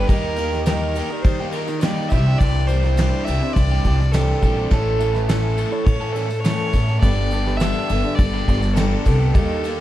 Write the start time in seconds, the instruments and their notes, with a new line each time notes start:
Already playing: overdriven electric guitar G4
0.07 upright bass D#2, overdriven electric guitar D#3 A#3 D#4 G4, twelve-string acoustic guitar G3, grand piano G4 A#4 D#5, fiddle A#4, kick, ride
0.36 overdriven electric guitar D#3 A#3 D#4, twelve-string acoustic guitar G4, ride, tambourine
0.41 overdriven electric guitar G4
0.52 grand piano G4 A#4 D#5, snare, tambourine
0.66 overdriven electric guitar D#3 A#3 D#4, twelve-string acoustic guitar G3, fiddle A#4, snare, ride, tambourine
0.70 overdriven electric guitar G4
0.95 overdriven electric guitar D#3 A#3 D#4 G4, ride, tambourine
1.10 grand piano G4 A#4 D5, muted overdriven electric guitar stroke, tambourine
1.22 upright bass D#3, twelve-string acoustic guitar G3 A#3 D#4 G4, fiddle C5, kick, ride, tambourine
1.40 overdriven electric guitar A#3 D#4 G4
1.50 overdriven electric guitar D#3, twelve-string acoustic guitar G4, fiddle A#4, ride, tambourine
1.55 overdriven electric guitar A#3 D#4 G4
1.68 muted overdriven electric guitar stroke, snare, tambourine
1.80 overdriven electric guitar D#3 A#3, twelve-string acoustic guitar G3, fiddle D5, snare, ride, tambourine
1.84 overdriven electric guitar D#4 G4
2.08 upright bass C2, overdriven electric guitar C3, grand piano E4 C5 D5, fiddle E5, kick, ride, tambourine
2.13 overdriven electric guitar E3 G3 C4 G4, twelve-string acoustic guitar D4
2.25 overdriven electric guitar G3 C4 G4, tambourine
2.38 upright bass C2, twelve-string acoustic guitar D4, fiddle D5, kick, ride, tambourine
2.42 overdriven electric guitar C3 E3 G3 C4 G4
2.54 tambourine
2.67 twelve-string acoustic guitar D4 G4, fiddle C5, ride, tambourine
2.71 overdriven electric guitar E3 G3 C4 G4
2.83 grand piano E4 C5 D5, snare, tambourine
2.97 overdriven electric guitar C3 E3 G3 C4 G4, twelve-string acoustic guitar D4, snare, ride, tambourine
3.24 upright bass C2, overdriven electric guitar E3 G3, twelve-string acoustic guitar D4, fiddle E5, ride, tambourine
3.29 overdriven electric guitar C4 G4
3.41 grand piano E4 C5 D5, muted overdriven electric guitar stroke, tambourine
3.53 upright bass C2, twelve-string acoustic guitar E3 G3, fiddle D5, kick, ride
3.58 twelve-string acoustic guitar D4 G4
3.71 overdriven electric guitar G3 C4 G4, tambourine
3.85 upright bass C2, overdriven electric guitar E3 G3 C4 G4, twelve-string acoustic guitar D4, kick, ride, tambourine
4.00 muted overdriven electric guitar stroke, snare
4.12 overdriven electric guitar C3 E3 G3 C4 G4, twelve-string acoustic guitar D4, fiddle A4, snare, ride, tambourine
4.43 upright bass A#1, overdriven electric guitar E3 G3 C4 G4, twelve-string acoustic guitar D4, kick, ride, tambourine
4.56 overdriven electric guitar G3 C4 G4
4.69 upright bass A1, overdriven electric guitar A2 E3 A3 C#4, grand piano E4, fiddle A4, kick, crash
4.73 grand piano A4 C#5, overdriven electric guitar A4
5.00 overdriven electric guitar E3 A3 C#4 A4, ride, tambourine
5.14 grand piano E4 A4 B4, snare, tambourine
5.27 overdriven electric guitar A2 E3 A3, fiddle A4, snare, ride, tambourine
5.31 overdriven electric guitar C#4 A4
5.57 overdriven electric guitar E3 A3 C#4 A4, ride, tambourine
5.70 grand piano E4 A4 C#5, muted overdriven electric guitar stroke, tambourine
5.84 upright bass A2, twelve-string acoustic guitar E3 A3, fiddle C#5, kick, ride, tambourine
5.89 twelve-string acoustic guitar C#4 A4
6.00 overdriven electric guitar A3 C#4 A4
6.12 overdriven electric guitar E3 A3, fiddle A4, ride, tambourine
6.16 overdriven electric guitar C#4 A4
6.29 muted overdriven electric guitar stroke, tambourine
6.40 fiddle C#5
6.44 overdriven electric guitar A2 E3 A3 C#4 A4, snare, ride, tambourine
6.73 upright bass A2, overdriven electric guitar E3 A3 C#4 A4, kick, ride, tambourine
6.88 overdriven electric guitar A3 C#4 A4, tambourine
7.00 upright bass G1, overdriven electric guitar G2 D3 G3, grand piano G4 A4 B4, fiddle D5, kick, ride
7.04 overdriven electric guitar B3 D4 G4, twelve-string acoustic guitar A4
7.31 overdriven electric guitar G3 B3 D4 G4, twelve-string acoustic guitar A4, ride, tambourine
7.46 grand piano G4 A4 B4, snare, tambourine
7.57 overdriven electric guitar G2, fiddle E5, ride, tambourine
7.61 overdriven electric guitar D3 G3 B3 D4 G4, twelve-string acoustic guitar A4, snare
7.89 upright bass G1, overdriven electric guitar G3 B3 D4 G4, twelve-string acoustic guitar A4, ride, tambourine
8.04 grand piano G4 A4 D5, muted overdriven electric guitar stroke, tambourine
8.15 fiddle D5, kick, ride, tambourine
8.19 upright bass G1, twelve-string acoustic guitar G3 B3 D4 A4
8.33 overdriven electric guitar G3 B3 D4 G4
8.48 upright bass G1, overdriven electric guitar G3 B3 D4 G4, twelve-string acoustic guitar A4, kick, ride, tambourine
8.62 muted overdriven electric guitar stroke, snare, tambourine
8.74 overdriven electric guitar G2 D3 G3 B3 D4, fiddle A4, snare, ride, tambourine
8.78 overdriven electric guitar G4, twelve-string acoustic guitar A4
9.05 upright bass C2, overdriven electric guitar G3 B3 D4 G4, twelve-string acoustic guitar A4, kick, ride, tambourine
9.20 overdriven electric guitar G3 B3 D4 G4, tambourine
9.31 upright bass D#2, overdriven electric guitar D#3 A#3 D#4 G4, twelve-string acoustic guitar G3, grand piano A#3 G4 D#5, fiddle A4, kick, ride
9.63 overdriven electric guitar D#3 A#3 D#4 G4, ride, tambourine